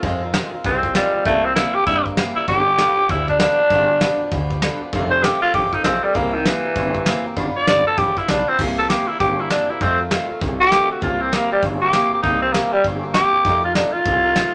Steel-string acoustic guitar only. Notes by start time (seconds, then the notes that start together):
0.03 F2 C3 D#3 G#3 C4 F4
0.22 D#3 G#3 C4 F4
0.33 F2 C3 D#3 G#3 C4 F4
0.52 D#3 G#3 C4 F4
0.64 D#3 G#3 C4 F4
0.84 D#3 G#3 C4 F4
0.94 F2 C3 D#3 G#3 C4 F4
1.13 D#3 G#3 C4 F4
1.25 C3 E3 A#3 C4 G4
1.44 A#3 C4 G4
1.56 C3 E3 A#3 C4 G4
1.75 C4 G4
1.86 E3 A#3 C4 G4
2.06 A#3 C4 G4
2.17 C3 E3 A#3 C4 G4
2.36 A#3 C4 G4
2.48 G2 D3 F3 B3 D4 G4
2.66 F3 B3 D4
2.78 G2 D3 F3 B3 D4 G4
2.97 F3 B3 D4 G4
3.09 F3 B3 D4 G4
3.27 F3 B3 D4 G4
3.38 G2 D3 F3 B3 D4 G4
3.58 F3 B3 D4 G4
3.70 G2 D3 F3 B3 D4 G4
3.89 F3 B3 D4 G4
4.00 G2 D3 F3 B3 D4 G4
4.19 F3 B3 D4 G4
4.31 F3 B3 D4 G4
4.50 F3 B3 D4 G4
4.63 G2 D3 F3 B3 D4 G4
4.82 F3 B3 D4 G4
4.93 F2 C3 D#3 A3 C4 F4
5.12 D#3 A3 C4 F4
5.24 F2 C3 D#3 A3 C4 F4
5.43 D#3 A3 C4 F4
5.54 D#3 A3 C4 F4
5.73 D#3 A3 C4 F4
5.84 F2 C3 D#3 A3 C4 F4
6.03 D#3 A3 C4 F4
6.14 C3 E3 A#3 C4 G4
6.34 A#3 C4 G4
6.46 C3 E3 A#3 C4 G4
6.64 A#3 C4 G4
6.75 E3 A#3 C4 G4
6.93 A#3 C4 G4
7.05 C3 E3 A#3 C4 G4
7.25 A#3 C4 G4
7.36 G3 B3 D4 F4
7.55 B3 D4 F4
7.68 G3 B3 D4 F4
7.86 B3 D4 F4
7.98 G3 B3 D4 F4
8.18 B3 D4 F4
8.29 G3 B3 D4 F4
8.48 B3 D4 F4
8.60 C3 E3 A#3 C4 G4
8.78 A#3 C4 G4
8.90 C3 E3 A#3 C4 G4
9.08 A#3 C4 G4
9.19 E3 A#3 C4 G4
9.39 A#3 C4 G4
9.51 C3 E3 A#3 C4 G4
9.70 A#3 C4 G4
9.81 F2 C3 D#3 A3 C4 F4
9.99 D#3 A3 C4 F4
10.10 F2 C3 D#3 A3 C4 F4
10.28 D#3 A3 C4 F4
10.40 D#3 A3 C4 F4
10.59 D#3 A3 C4 F4
10.70 F2 C3 D#3 A3 C4 F4
10.88 D#3 A3 C4 F4
11.00 C3 E3 A#3 C4 G4
11.19 A#3 C4 G4
11.31 C3 E3 A#3 C4 G4
11.50 A#3 C4 G4
11.61 E3 A#3 C4 G4
11.80 A#3 C4 G4
11.92 C3 E3 A#3 C4 G4
12.11 A#3 C4 G4
12.23 C3 E3 A#3 C4 G4
12.42 A#3 C4 G4
12.54 C3 E3 A#3 C4 G4
12.73 A#3 C4 G4
12.84 E3 A#3 C4 G4
13.03 A#3 C4 G4
13.15 C3 E3 A#3 C4 G4
13.33 A#3 C4 G4
13.45 F2 C3 D#3 A3 D#4 F4
13.62 D#3 A3 D#4 F4
13.74 F2 C3 D#3 A3 D#4 F4
13.92 D#3 A3 D#4 F4
14.04 D#3 A3 D#4 F4
14.22 D#3 A3 D#4 F4
14.35 F2 C3 D#3 A3 D#4 F4